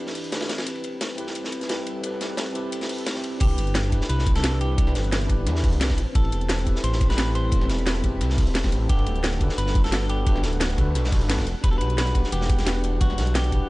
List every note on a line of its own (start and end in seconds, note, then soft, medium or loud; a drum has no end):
0.00 0.47 E3 medium
0.00 3.37 C4 medium
0.00 0.31 D4 medium
0.00 0.47 D4 medium
0.00 0.32 E4 medium
0.00 0.33 G4 medium
0.00 0.33 B4 loud
0.00 3.37 B4 medium
0.07 snare medium
0.15 closed hi-hat medium
0.15 open hi-hat medium
0.24 closed hi-hat soft
0.31 0.40 D4 medium
0.31 0.40 E4 medium
0.31 0.41 G4 medium
0.31 0.41 B4 loud
0.31 snare loud
0.31 closed hi-hat medium
0.31 ride medium
0.40 snare loud
0.40 ride medium
0.49 3.38 G3 medium
0.49 3.38 A4 medium
0.49 snare loud
0.49 closed hi-hat medium
0.49 ride medium
0.58 snare loud
0.58 ride medium
0.64 0.85 A1 loud
0.64 1.14 C4 medium
0.64 1.16 E4 medium
0.64 1.16 G4 medium
0.64 closed hi-hat medium
0.64 ride medium
0.69 1.17 B4 medium
0.75 ride soft
0.84 1.17 E1 medium
0.84 closed hi-hat medium
0.84 ride medium
1.01 snare loud
1.01 closed hi-hat medium
1.01 ride medium
1.10 ride soft
1.16 1.26 E1 medium
1.16 1.66 C4 loud
1.16 1.67 E4 medium
1.16 1.68 G4 medium
1.16 closed hi-hat medium
1.16 ride medium
1.21 1.69 B4 loud
1.27 snare soft
1.35 2.02 A1 medium
1.35 closed hi-hat medium
1.35 ride medium
1.44 snare medium
1.52 closed hi-hat medium
1.52 ride medium
1.61 snare soft
1.61 closed hi-hat soft
1.68 1.77 C4 medium
1.68 1.78 E4 medium
1.68 1.78 G4 medium
1.68 1.78 B4 medium
1.68 snare loud
1.68 closed hi-hat medium
1.68 ride medium
1.87 closed hi-hat medium
1.87 ride medium
2.01 2.22 A1 loud
2.01 2.51 C4 medium
2.01 2.53 E4 medium
2.01 2.54 G4 medium
2.01 closed hi-hat medium
2.01 ride medium
2.06 2.54 B4 medium
2.21 2.54 E1 medium
2.21 snare medium
2.21 closed hi-hat medium
2.21 ride medium
2.37 snare loud
2.37 closed hi-hat medium
2.37 ride medium
2.53 3.03 C4 loud
2.53 3.04 E4 medium
2.53 3.05 G4 medium
2.53 closed hi-hat medium
2.53 ride medium
2.58 3.06 B4 loud
2.72 closed hi-hat medium
2.72 ride loud
2.81 snare medium
2.81 closed hi-hat soft
2.89 closed hi-hat medium
2.89 open hi-hat medium
2.98 closed hi-hat soft
3.06 snare loud
3.06 closed hi-hat medium
3.06 ride medium
3.14 3.38 C4 medium
3.14 3.39 E4 medium
3.14 3.39 G4 medium
3.14 3.40 C5 medium
3.14 snare medium
3.24 closed hi-hat medium
3.24 ride medium
3.38 3.60 C2 loud
3.38 5.95 E3 medium
3.38 8.86 C4 medium
3.38 3.89 D4 medium
3.38 5.96 D4 medium
3.38 3.90 E4 medium
3.38 4.05 G4 medium
3.38 3.91 G4 medium
3.38 5.96 B4 medium
3.38 kick loud
3.38 closed hi-hat loud
3.38 crash loud
3.38 ride medium
3.43 3.92 B4 medium
3.51 ride soft
3.58 3.91 G1 medium
3.58 closed hi-hat medium
3.58 ride medium
3.67 closed hi-hat soft
3.75 snare loud
3.75 closed hi-hat loud
3.75 ride medium
3.84 closed hi-hat soft
3.84 ride soft
3.90 4.00 G1 medium
3.90 4.41 D4 loud
3.90 4.41 E4 medium
3.90 4.42 G4 medium
3.90 kick medium
3.90 closed hi-hat medium
3.90 ride medium
3.95 4.43 B4 loud
4.01 snare soft
4.09 4.77 C2 medium
4.09 4.35 B4 loud
4.09 closed hi-hat loud
4.09 ride medium
4.19 snare soft
4.26 kick loud
4.26 closed hi-hat medium
4.26 ride medium
4.35 4.53 A4 loud
4.35 snare soft
4.35 closed hi-hat soft
4.42 4.51 D4 medium
4.42 4.52 E4 medium
4.42 4.52 G4 medium
4.42 4.53 B4 medium
4.42 snare loud
4.42 closed hi-hat loud
4.42 ride medium
4.54 4.61 A4 medium
4.61 4.93 G4 medium
4.61 closed hi-hat medium
4.61 ride medium
4.76 4.97 C2 loud
4.76 5.26 D4 medium
4.76 5.27 E4 medium
4.76 5.28 G4 medium
4.76 kick loud
4.76 closed hi-hat medium
4.76 ride medium
4.81 5.29 B4 medium
4.87 snare soft
4.95 5.28 G1 medium
4.95 snare soft
4.95 closed hi-hat medium
4.95 ride medium
5.04 closed hi-hat soft
5.12 snare loud
5.12 closed hi-hat loud
5.12 ride medium
5.21 closed hi-hat soft
5.27 5.48 G1 medium
5.27 5.78 D4 loud
5.27 5.79 E4 medium
5.27 5.79 G4 medium
5.27 kick medium
5.27 closed hi-hat medium
5.27 ride medium
5.32 5.80 B4 loud
5.47 5.74 E2 loud
5.47 snare soft
5.47 closed hi-hat loud
5.47 ride medium
5.56 snare soft
5.64 kick loud
5.64 closed hi-hat medium
5.64 open hi-hat medium
5.73 6.00 C2 medium
5.73 closed hi-hat soft
5.80 5.89 D4 medium
5.80 5.89 E4 medium
5.80 5.89 G4 medium
5.80 5.90 B4 medium
5.80 snare loud
5.80 closed hi-hat loud
5.80 ride medium
5.90 kick medium
5.90 snare medium
5.90 snare soft
5.97 6.06 A1 medium
5.97 13.69 G3 medium
5.97 11.43 A4 medium
5.97 8.87 B5 loud
5.97 closed hi-hat medium
5.97 ride medium
6.13 6.34 A1 loud
6.13 6.63 C4 medium
6.13 6.64 E4 medium
6.13 6.65 G4 medium
6.13 6.83 A4 medium
6.13 kick loud
6.13 closed hi-hat medium
6.13 ride medium
6.18 6.66 B4 medium
6.25 ride soft
6.32 6.65 E1 medium
6.32 closed hi-hat medium
6.32 ride medium
6.41 closed hi-hat soft
6.49 snare loud
6.49 closed hi-hat medium
6.49 ride loud
6.59 closed hi-hat soft
6.59 ride soft
6.64 6.75 E1 medium
6.64 7.15 C4 medium
6.64 7.16 E4 medium
6.64 7.17 G4 medium
6.64 kick medium
6.64 closed hi-hat medium
6.64 ride medium
6.69 7.17 B4 loud
6.76 snare soft
6.84 7.51 A1 medium
6.84 7.09 C5 loud
6.84 closed hi-hat medium
6.84 ride medium
6.92 snare medium
7.01 kick loud
7.01 closed hi-hat medium
7.01 ride medium
7.10 7.35 B4 loud
7.10 snare soft
7.10 closed hi-hat soft
7.17 7.26 C4 medium
7.17 7.26 E4 medium
7.17 7.27 G4 medium
7.17 7.27 B4 loud
7.17 snare loud
7.17 closed hi-hat medium
7.17 ride medium
7.35 7.67 C5 loud
7.35 closed hi-hat medium
7.35 ride medium
7.50 7.71 A1 loud
7.50 8.00 C4 medium
7.50 8.01 E4 medium
7.50 8.02 G4 medium
7.50 kick loud
7.50 closed hi-hat medium
7.50 ride medium
7.55 8.03 B4 medium
7.61 snare soft
7.69 8.02 E1 medium
7.69 snare medium
7.69 closed hi-hat medium
7.69 ride medium
7.79 closed hi-hat soft
7.86 snare loud
7.86 closed hi-hat medium
7.86 ride loud
7.96 closed hi-hat soft
8.01 8.22 E1 medium
8.01 8.52 C4 medium
8.01 8.53 E4 medium
8.01 8.54 G4 medium
8.01 kick medium
8.01 closed hi-hat medium
8.01 ride medium
8.06 8.54 B4 loud
8.21 8.49 C2 medium
8.21 snare soft
8.21 closed hi-hat medium
8.21 ride medium
8.30 snare soft
8.38 kick loud
8.38 closed hi-hat medium
8.38 open hi-hat medium
8.47 8.74 E1 medium
8.47 closed hi-hat soft
8.55 snare loud
8.55 closed hi-hat medium
8.55 ride medium
8.63 8.87 C4 medium
8.63 8.87 E4 medium
8.63 8.88 G4 medium
8.63 8.88 C5 medium
8.63 kick medium
8.63 snare medium
8.63 snare soft
8.72 8.88 A1 medium
8.72 closed hi-hat medium
8.72 ride medium
8.87 9.08 G1 loud
8.87 11.44 B3 medium
8.87 9.37 D4 medium
8.87 9.58 G4 medium
8.87 9.39 A4 medium
8.87 9.38 F#5 medium
8.87 13.69 F#5 medium
8.87 kick loud
8.87 closed hi-hat medium
8.87 ride medium
8.92 9.40 B4 medium
8.99 ride soft
9.06 9.42 D1 medium
9.06 closed hi-hat medium
9.06 ride medium
9.16 closed hi-hat soft
9.24 snare loud
9.24 closed hi-hat medium
9.24 ride medium
9.33 closed hi-hat soft
9.33 ride soft
9.38 9.49 D2 medium
9.38 9.89 D4 medium
9.38 9.90 F#4 medium
9.38 9.91 A4 medium
9.38 kick medium
9.38 closed hi-hat medium
9.38 ride medium
9.43 9.92 B4 loud
9.49 snare soft
9.58 10.25 G1 medium
9.58 9.84 B4 loud
9.58 closed hi-hat medium
9.58 ride medium
9.67 snare medium
9.75 kick loud
9.75 closed hi-hat medium
9.75 ride medium
9.84 10.08 A4 loud
9.84 snare soft
9.84 closed hi-hat soft
9.91 10.00 D4 medium
9.91 10.00 F#4 medium
9.91 10.01 A4 medium
9.91 10.01 B4 medium
9.91 snare loud
9.91 closed hi-hat medium
9.91 ride medium
10.09 10.41 G4 medium
10.09 closed hi-hat medium
10.09 ride medium
10.24 10.45 G1 loud
10.24 10.74 D4 medium
10.24 10.76 F#4 medium
10.24 10.77 A4 medium
10.24 kick loud
10.24 closed hi-hat medium
10.24 ride medium
10.29 10.77 B4 medium
10.36 snare soft
10.43 10.80 D1 medium
10.43 snare medium
10.43 closed hi-hat medium
10.43 ride medium
10.53 closed hi-hat soft
10.60 snare loud
10.60 closed hi-hat medium
10.60 ride medium
10.70 closed hi-hat soft
10.76 10.97 D2 medium
10.76 11.26 D4 medium
10.76 11.27 F#4 medium
10.76 11.28 A4 medium
10.76 kick medium
10.76 closed hi-hat medium
10.76 ride medium
10.81 11.29 B4 loud
10.95 11.23 B1 medium
10.95 snare soft
10.95 closed hi-hat medium
10.95 ride medium
11.04 snare medium
11.12 kick loud
11.12 closed hi-hat medium
11.12 open hi-hat medium
11.21 11.48 G1 medium
11.21 closed hi-hat soft
11.28 11.37 D4 medium
11.28 11.37 F#4 medium
11.28 11.38 A4 medium
11.28 11.38 B4 medium
11.28 snare loud
11.28 closed hi-hat medium
11.28 ride medium
11.38 kick medium
11.38 snare medium
11.38 snare soft
11.47 11.55 E1 medium
11.47 13.69 E3 medium
11.47 13.69 D4 medium
11.47 closed hi-hat medium
11.47 ride medium
11.61 11.82 E1 loud
11.61 12.12 D4 medium
11.61 12.13 F#4 medium
11.61 12.14 G4 medium
11.61 11.71 B4 loud
11.61 kick loud
11.61 closed hi-hat loud
11.61 ride medium
11.66 12.14 B4 medium
11.71 11.78 A4 loud
11.71 ride soft
11.78 12.14 B1 medium
11.78 11.97 B4 loud
11.78 closed hi-hat medium
11.78 ride medium
11.90 closed hi-hat soft
11.98 12.32 B4 loud
11.98 snare loud
11.98 closed hi-hat loud
11.98 ride medium
12.07 closed hi-hat soft
12.07 ride soft
12.13 12.23 B1 medium
12.13 12.63 D4 loud
12.13 12.65 G4 medium
12.13 12.64 F#5 medium
12.13 kick medium
12.13 closed hi-hat medium
12.13 ride medium
12.18 12.66 B4 loud
12.24 snare soft
12.32 13.00 E1 medium
12.32 13.01 G4 loud
12.32 closed hi-hat loud
12.32 ride medium
12.41 snare medium
12.49 kick loud
12.49 closed hi-hat medium
12.49 ride medium
12.58 snare soft
12.58 closed hi-hat soft
12.65 12.74 D4 medium
12.65 12.75 F#4 medium
12.65 12.75 G4 medium
12.65 12.76 B4 loud
12.65 snare loud
12.65 closed hi-hat loud
12.65 ride medium
12.84 closed hi-hat medium
12.84 ride medium
12.98 13.20 E1 loud
12.98 13.51 G3 medium
12.98 13.49 D4 medium
12.98 13.50 F#4 medium
12.98 13.35 F#4 medium
12.98 kick loud
12.98 closed hi-hat loud
12.98 ride medium
13.03 13.52 B4 medium
13.10 snare soft
13.18 13.51 B1 medium
13.18 snare medium
13.18 closed hi-hat medium
13.18 ride medium
13.27 closed hi-hat soft
13.35 13.69 G4 medium
13.35 snare loud
13.35 closed hi-hat loud
13.35 ride medium
13.44 closed hi-hat soft
13.50 13.60 B1 medium
13.50 13.69 D4 loud
13.50 13.69 G4 medium
13.50 13.69 F#5 medium
13.50 kick medium
13.50 closed hi-hat medium
13.50 ride medium
13.55 13.69 B4 loud